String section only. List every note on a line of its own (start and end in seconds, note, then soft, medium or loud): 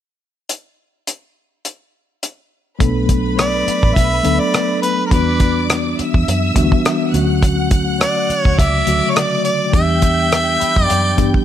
2.80 5.07 B4 medium
2.80 5.07 B5 medium
5.11 5.96 D5 medium
5.11 5.96 D6 medium
5.98 7.11 E5 medium
5.98 7.11 E6 medium
7.14 8.56 F#5 medium
7.14 8.55 F#6 medium
8.57 9.71 D5 medium
8.57 9.71 D6 medium
9.72 11.45 G5 medium
9.72 11.45 G6 medium